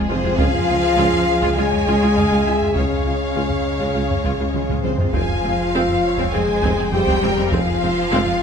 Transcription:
Already playing: sub bass F1, ambient pad C3 F3 F5, violin section G#4
0.09 tuba F1, double bass section F2, cello section C3, viola section G#3 F4, french horn section C4, violin section C5
0.24 double bass section F2, viola section G#3 F4, taiko low
0.37 double bass section C#2, sub bass C#2, tuba C#2, cello section F3, viola section G#3 F4, ambient pad G#3 C#4 G#4 F5, french horn section F4, violin section F5, taiko
0.54 taiko low
0.68 double bass section C#2, tuba C#2, viola section G#3 F4
0.98 double bass section C#2, tuba C#2, viola section G#3 F4
1.13 taiko low
1.43 double bass section C#2, viola section G#3 F4, taiko
1.56 double bass section C#2, tuba C#2, cello section G#3, viola section G#3 F4, french horn section G#4, violin section C#5 G#5
1.72 taiko low
1.87 double bass section C#2, tuba C#2, viola section G#3 F4, taiko
2.02 double bass section C#2, viola section G#3 F4
2.16 double bass section C#2, tuba C#2, viola section G#3 F4, violin section F5, taiko low
2.31 double bass section C#2, viola section G#3 F4, taiko
2.46 double bass section C#2, tuba C#2, viola section G#3 F4, violin section E5
2.61 double bass section C#2, viola section G#3 F4, taiko low
2.75 tuba C#2, double bass section C#2, cello section C#3, viola section G#3 F4, french horn section C#4, violin section C#5 F5, taiko
2.90 taiko low
3.06 double bass section C#2, tuba C#2, viola section G#3 F4
3.35 double bass section C#2, tuba C#2, viola section G#3 F4
3.50 taiko low
3.80 double bass section C#2, viola section G#3 F4, taiko
3.95 double bass section C#2, tuba C#2, viola section G#3 F4
4.10 taiko low
4.24 double bass section C#2, tuba C#2, viola section G#3 F4, taiko
4.40 double bass section C#2, viola section G#3 F4
4.54 tuba C#2, double bass section C#2, viola section G#3 F4, taiko mid
4.69 double bass section C#2, viola section G#3 F4, taiko low-mid
4.84 double bass section C#2, tuba C#2, cello section C3, viola section G#3 F4, french horn section C4, violin section C5, taiko mid
4.98 double bass section C#2, viola section G#3 F4, taiko low
5.13 sub bass F1, tuba F1, double bass section F2, cello section F3, ambient pad F3 C4 C5 F5, viola section G#3 C4, french horn section F4, violin section F5 G#5, taiko
5.28 taiko low
5.43 tuba F1, double bass section F2, viola section G#3 C4
5.73 tuba F1, double bass section F2, viola section G#3 C4, violin section F5
5.88 taiko low
6.03 violin section C#5
6.18 double bass section F2, viola section G#3 C4, taiko
6.32 tuba F1, double bass section F2, cello section G#3, viola section G#3 C4, french horn section G#4, violin section C5 G#5
6.47 taiko low
6.62 tuba F1, double bass section F2, viola section G#3 C4, taiko
6.78 double bass section F2, viola section G#3 C4
6.92 tuba F1, double bass section F2, cello section G3, viola section G#3 C4, french horn section G4, violin section C5 G5, taiko low
7.07 double bass section F2, viola section G#3 C4, taiko
7.22 tuba F1, double bass section F2, viola section G#3 C4, violin section A#4
7.37 double bass section F2, viola section G#3 C4, taiko low
7.51 tuba F1, double bass section F2, cello section F3, viola section G#3 C4, french horn section F4, violin section G#4 F5, taiko
7.67 taiko low
7.81 tuba F1, double bass section F2, viola section G#3 C4, violin section C5
8.11 tuba F1, double bass section F2, viola section G#3 C4, violin section F5
8.26 taiko low

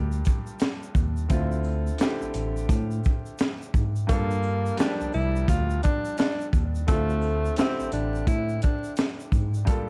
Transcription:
Already playing: tine electric piano D2, grand piano G2 G3 A#3 F4 G4 A4
0.12 shaker
0.25 kick, closed hi-hat, shaker
0.47 shaker
0.59 snare, closed hi-hat, shaker
0.83 shaker
0.95 tine electric piano D#2, kick, shaker
1.17 shaker
1.29 tine electric piano D2, grand piano D3 A3 C4 E4 F4, kick, closed hi-hat, shaker
1.52 shaker
1.64 shaker
1.87 shaker
1.98 grand piano D3 A3 C4 E4, snare, closed hi-hat, shaker
2.03 grand piano G4
2.22 tine electric piano A1, shaker
2.34 tine electric piano A1, closed hi-hat, shaker
2.57 shaker
2.69 tine electric piano A2, kick, closed hi-hat, shaker
2.91 shaker
3.04 kick, shaker
3.26 shaker
3.39 snare, closed hi-hat, shaker
3.62 shaker
3.74 tine electric piano G#2, kick, shaker
3.96 shaker
4.07 grand piano G2 G3 A#3 F4 A4, tine electric piano G2, tenor saxophone A#3, kick, closed hi-hat, shaker
4.31 shaker
4.43 shaker
4.66 shaker
4.77 grand piano G2 F3 G3 A#3 G4, tenor saxophone D4, snare, closed hi-hat, shaker
5.01 tine electric piano C2, shaker
5.13 tine electric piano C2, tenor saxophone E4, shaker
5.36 shaker
5.48 tine electric piano D2, tenor saxophone F4, kick, closed hi-hat, shaker
5.70 shaker
5.83 tenor saxophone D4, kick, closed hi-hat, shaker
6.05 shaker
6.18 tenor saxophone D4, snare, closed hi-hat, shaker
6.41 shaker
6.53 tine electric piano D#2, kick, shaker
6.75 shaker
6.87 tine electric piano D2, grand piano D3 A3 C4 E4 F4, tenor saxophone A3, kick, closed hi-hat, shaker
7.10 shaker
7.22 shaker
7.45 shaker
7.56 grand piano D3 A3 C4 E4, tenor saxophone C4, snare, closed hi-hat, shaker
7.61 grand piano G4
7.80 tine electric piano A1, shaker
7.92 tine electric piano A1, tenor saxophone D4, closed hi-hat, shaker
8.15 shaker
8.27 tine electric piano A2, tenor saxophone E4, kick, closed hi-hat, shaker
8.49 shaker
8.62 tenor saxophone D4, kick, closed hi-hat, shaker
8.84 shaker
8.96 snare, closed hi-hat, shaker
9.20 shaker
9.32 tine electric piano G#2, kick, shaker
9.54 shaker
9.65 grand piano G2 G3 A#3 F4 A4, kick, closed hi-hat, shaker

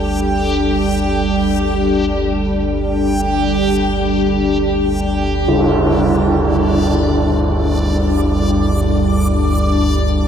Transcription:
Already playing: synth drone G1 D2, analog synth pad G3 D4 A4, synth texture G4
5.47 synth texture D5, tam-tam

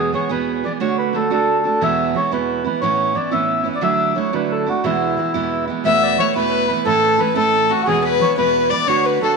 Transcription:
Already playing: steel-string acoustic guitar E2 B2 E3 G#3 B3 G#4, accordion G#4
0.13 steel-string acoustic guitar E3 G#3 B3 G#4, accordion C#5
0.29 steel-string acoustic guitar E2 B2 E3 G#3 B3 G#4, accordion B4
0.64 steel-string acoustic guitar E3 G#3 B3 G#4, accordion D5
0.80 steel-string acoustic guitar D3 A3 D4 F#4, accordion C#5
0.99 accordion B4
1.13 steel-string acoustic guitar D3 A3 D4 F#4, accordion A4
1.30 steel-string acoustic guitar D3 A3 D4 F#4, accordion A4
1.64 steel-string acoustic guitar A3 D4 F#4, accordion A4
1.81 steel-string acoustic guitar E2 B2 E3 G#3 B3 E4, accordion E5
2.14 steel-string acoustic guitar E3 G#3 B3 E4, accordion C#5
2.31 steel-string acoustic guitar E2 B2 E3 G#3 B3 E4, accordion B4
2.64 steel-string acoustic guitar E3 G#3 B3 E4, accordion B4
2.81 steel-string acoustic guitar A2 E3 B3 C#4 E4, accordion C#5
3.15 steel-string acoustic guitar E3 B3 C#4 E4, accordion D5
3.31 steel-string acoustic guitar A2 E3 B3 C#4 E4, accordion E5
3.64 steel-string acoustic guitar B3 C#4 E4
3.76 accordion D5
3.81 steel-string acoustic guitar D3 F#3 A3 D4 E4, accordion E5
4.15 steel-string acoustic guitar F#3 A3 D4 E4, accordion C#5
4.33 steel-string acoustic guitar D3 F#3 A3 D4 E4, accordion B4
4.51 accordion A4
4.66 steel-string acoustic guitar A3 D4 E4, accordion F#4
4.84 steel-string acoustic guitar E2 B2 E3 G#3 B3 E4, accordion E4
5.17 steel-string acoustic guitar E3 G#3 B3 E4
5.34 steel-string acoustic guitar E2 B2 E3 G#3 B3 E4
5.67 steel-string acoustic guitar E3 G#3 B3 E4
5.84 steel-string acoustic guitar E2 B2 E3 A3 B3 E4, fiddle E5, accordion E5
6.03 accordion D5
6.18 steel-string acoustic guitar E3 A3 B3 E4, accordion C#5, fiddle C#5
6.35 steel-string acoustic guitar E2 B2 E3 A3 B3 E4, fiddle B4, accordion B4
6.68 steel-string acoustic guitar E3 A3 B3 E4, accordion B4
6.85 steel-string acoustic guitar A2 E3 A3 C#4 E4, accordion A4, fiddle A4
7.19 steel-string acoustic guitar E3 A3 C#4 E4, accordion B4, fiddle B4
7.35 steel-string acoustic guitar A2 E3 A3 C#4 E4, accordion A4, fiddle A4
7.69 steel-string acoustic guitar A3 C#4 E4, fiddle F#4, accordion F#4
7.83 accordion F#4 G#4
7.87 steel-string acoustic guitar E2 B2 E3 G#3 B3 E4, fiddle G#4
8.04 fiddle B4, accordion B4
8.21 steel-string acoustic guitar E3 G#3 B3 E4, accordion C#5
8.37 steel-string acoustic guitar E2 B2 E3 G#3 B3 E4, fiddle B4, accordion B4
8.70 steel-string acoustic guitar E3 G#3 B3 E4, fiddle D5, accordion D5
8.87 steel-string acoustic guitar D3 A3 D4 F#4, fiddle C#5, accordion C#5
9.05 accordion B4, fiddle B4
9.21 steel-string acoustic guitar D3 A3 D4 F#4, accordion A4, fiddle A4

